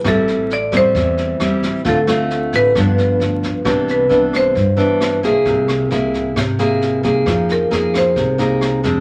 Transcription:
<<
  \new Staff \with { instrumentName = "Marimba" } { \time 4/4 \key c \major \tempo 4 = 133 a'4 d''8 c''2~ c''8 | a'4. b'4. r4 | r8 b'4 c''4. r4 | r1 |
r8 bes'4 c''4. r4 | }
  \new Staff \with { instrumentName = "Nylon-string guitar" } { \time 4/4 \key c \major << { <g c' e'>4 r8 <g c' e'>4. <g c' e'>4 | <a c' f'>8 <a c' f'>4. <f b d'>2 | <e b d'>4 <e b d'>4 r8 <e b d'>4 <bes e' aes'>8~ | <bes e' aes'>4 <bes e' gis'>4 r8 <bes e' gis'>4 <bes dis' gis'>8~ |
<bes dis' gis'>4 <bes ees' aes'>4. <bes ees' aes'>4 <aes c' d'>8 | } \\ { a,2 e2 | d2 g,2 | c2 g,2 | c2 c2 |
f2 c2 | } >> }
  \new Staff \with { instrumentName = "Upright bass" } { \clef bass \time 4/4 \key c \major a,,4. e,8 e,4 e,8 r8 | d,4. a,,8 g,,4 d,8 r8 | c,4 c,4 g,4. c,8 | c,4 c,4 gis,,4. c,8 |
f,4 f,4 c,4. f,8 | }
  \new DrumStaff \with { instrumentName = "Drums" } \drummode { \time 4/4 <bd ss sn>8 sn8 sn8 <bd ss sn>8 <bd sn>8 sn8 <ss sn>8 <bd sn>8 | <bd sn>8 <ss sn>8 sn8 <bd sn>8 <bd ss sn>8 sn8 sn8 <bd sn>8 | <bd ss sn>8 sn8 sn8 <bd ss sn>8 <bd sn>8 sn8 <ss sn>8 <bd sn>8 | <bd sn>8 <ss sn>8 sn8 <bd sn>8 <bd ss sn>8 sn8 sn8 <bd sn>8 |
<bd ss sn>8 sn8 sn8 <bd ss sn>8 <bd sn>8 sn8 <ss sn>8 <bd sn>8 | }
>>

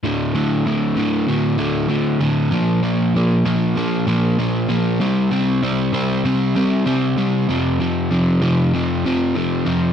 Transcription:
\new Staff \with { instrumentName = "Overdriven electric guitar" } { \clef bass \time 4/4 \key d \minor \tempo 4 = 97 <d, a, d>8 <d, a, d>8 <d, a, d>8 <d, a, d>8 <d, a, d>8 <d, a, d>8 <d, a, d>8 <d, a, d>8 | <bes, f bes>8 <bes, f bes>8 <bes, f bes>8 <bes, f bes>8 <bes, f bes>8 <bes, f bes>8 <bes, f bes>8 <bes, f bes>8 | <c g c'>8 <c g c'>8 <c g c'>8 <c g c'>8 <c g c'>8 <c g c'>8 <c g c'>8 <c g c'>8 | <f, c f>8 <f, c f>8 <f, c f>8 <f, c f>8 <f, c f>8 <f, c f>8 <f, c f>8 <f, c f>8 | }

